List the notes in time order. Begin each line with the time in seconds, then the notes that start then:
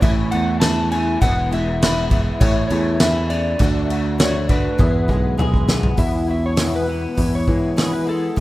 0.01 A1 A2 E3 A3 C#4 E4 A4 C#5 E5, kick, crash
0.31 E2 A3 C#4 E4 F#5, crash
0.60 E2 E3 A3 C#4 A5, snare, crash
0.64 E4
0.91 A3 C#4 E4 G#5, crash
1.21 E1 E2 B2 E3 G#3 B3 E4 G#4 B4 E5 F#5, kick, crash
1.51 E3 G#3 B3 E4 E5, crash
1.80 E3 G#3 E4 G#4 B4 E5, snare, crash
1.85 B3 E4
2.10 E3 G#3 B3 E4, kick, crash
2.40 A1 A2 E3 A3 C#4 E4 A4 C#5 E5, kick, crash
2.68 E2 C#4 E4 C#5, crash
2.73 A3
3.00 E2 E3 A3 C#4 E5, snare, crash
3.04 E4
3.30 C#4 E4 D5, crash
3.34 A3
3.59 D2 D3 A3 D4 F#4 A4 D5 F#5, kick, crash
3.63 F#4
3.88 A3 D4 F#4, crash
3.93 A3
4.18 D3 A3 D4 F#4 A4 C#5 E5, snare, crash
4.49 A3 D4 F#4 B4, kick, crash
4.78 E2 B2 E3 G#3 B3 E4 G#4 B4 E5, kick, high tom
5.08 B1 G#3 B3 G#4, kick
5.12 E3
5.38 B1 E3 G#3 B3 G#4, mid tom
5.54 kick
5.68 E3 G#3 B3 G#4, snare
5.83 floor tom
5.97 E2 B2 E3 G#3 B3 E4 E5, kick, open hi-hat
6.27 B2 E3 G#3 B3 E4 E5
6.46 C#5
6.56 E2 B2 E3 G#3 B3 E4, snare, open hi-hat
6.76 B4
6.86 E3 G#3 B3 E4
7.15 E2 E3 G#3 B3 E4, kick, open hi-hat
7.19 E3
7.35 C#5
7.46 E3 G#3 B3 E4, kick
7.76 E2 B2 E3 G#3 B3 E4 G#4, snare, open hi-hat
7.93 B4
8.06 E3 G#3 B3 E4 A4
8.36 A2 E3 A3